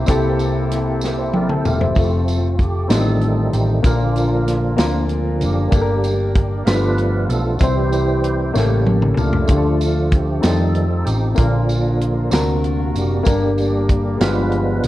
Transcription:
Already playing: C3 A#3 C4 E4 G4 A#4 C5
0.06 C2 C3 C4 E4 G4 A4, kick, closed hi-hat, tambourine
0.39 closed hi-hat, tambourine
0.72 snare, closed hi-hat
1.01 snare, tambourine
1.18 C5 E5
1.33 A#4 D5 E5 G5, high tom
1.49 A4 C5 A5, mid tom
1.64 E1 A3 C4 F4 G4 A#4 E5 G5, mid tom, tambourine
1.81 E4 G4 C5 E5, floor tom
1.94 F1 A3 C4 F4, kick, closed hi-hat, tambourine
1.98 C3 F3 A3 A4
2.28 closed hi-hat, tambourine
2.59 G4, kick, closed hi-hat
2.88 A1 A2 D#3 G3 A3 C4 D#4 F4 A4, snare, closed hi-hat, tambourine
2.92 G4
2.99 A4
3.21 closed hi-hat
3.53 A1 G4, closed hi-hat, tambourine
3.83 A#1 A#2 D3 F3 A#3 D4 F4, kick, closed hi-hat, tambourine
3.87 D4 A#4
4.16 closed hi-hat, tambourine
4.47 snare, closed hi-hat
4.76 D2 A#3 C4 F4 A#4, snare, closed hi-hat, tambourine
4.84 D4
5.09 closed hi-hat
5.41 F#1 A#3 D4 G4, closed hi-hat, tambourine
5.71 G1 G2 D3 G3 A#3 D4 G4 A4, kick, closed hi-hat, tambourine
5.82 A#4
6.04 closed hi-hat, tambourine
6.35 kick, closed hi-hat
6.65 G1 G2 F3 A3 B3 D4 F4 G4 B4, snare, closed hi-hat, tambourine
6.69 A4
6.98 closed hi-hat
7.29 B1 A4, closed hi-hat, tambourine
7.54 F#4
7.59 C2 C3 E3 G3 C4 E4 G4 C5, kick, closed hi-hat, tambourine
7.63 C5
7.92 closed hi-hat, tambourine
8.24 closed hi-hat
8.53 A1 A2 C#3 G3 A#3 C#4 G4 A4, snare, tambourine
8.86 high tom
9.02 mid tom
9.17 C#2 A3 D4 F4, mid tom, tambourine
9.33 floor tom
9.46 D2 D3 A3 D4 F4, kick, closed hi-hat, tambourine
9.50 D3 F3 A3 G4
9.57 A4
9.81 closed hi-hat, tambourine
10.11 G4, kick, closed hi-hat
10.40 F2 C4 D#4 F4 A4, snare, closed hi-hat, tambourine
10.45 D#3 G3 A3 C4 D#4
10.75 closed hi-hat
11.05 A1 G4, closed hi-hat, tambourine
11.30 E4
11.35 A#1 A#2 A#3 D4 F4 A#4, kick, closed hi-hat, tambourine
11.39 D3 F3 A#3 D4
11.69 closed hi-hat, tambourine
12.01 closed hi-hat
12.30 D2 C3 D3 C4 D4 F#4, snare, closed hi-hat, tambourine
12.34 A#3 F#4 A#4
12.64 closed hi-hat
12.95 F#1 A#3 D4 G4, closed hi-hat, tambourine
13.23 G1 G2 A#3 D4 G4 A#4, kick, closed hi-hat, tambourine
13.27 D3 G3 A#3
13.58 closed hi-hat, tambourine
13.89 kick, closed hi-hat
14.16 G2 G#3 B3 F4
14.21 G1 F3 G#3 B3 D4 F4 G4 B4, snare, closed hi-hat, tambourine
14.52 closed hi-hat
14.83 B1, closed hi-hat, tambourine

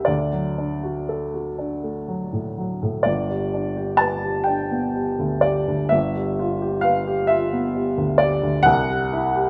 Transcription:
Already playing: C#2 G3 E4 G4 A#4 E5 F#5
0.05 D2 D5
0.33 F#3
0.58 D4
0.83 F#4
1.09 A4
1.34 F#4
1.58 D4
1.83 A3
2.08 F#3
2.33 A2
2.58 F#3
2.83 A2
3.03 G1 D5
3.30 G3
3.54 D4
3.77 G4
3.97 B4 A5
4.24 G4
4.44 D4 G5
4.71 B3
4.95 G3
5.19 D2
5.41 G3 D5
5.68 D2
5.89 G1 E5
6.15 G3
6.39 F4
6.62 G4
6.81 B4 F5
7.07 G4
7.27 F4 E5
7.53 B3
7.75 G3
7.98 D2
8.18 G3 D5
8.43 D2
8.63 C2 F#5
8.89 G3
9.13 E4
9.36 G4

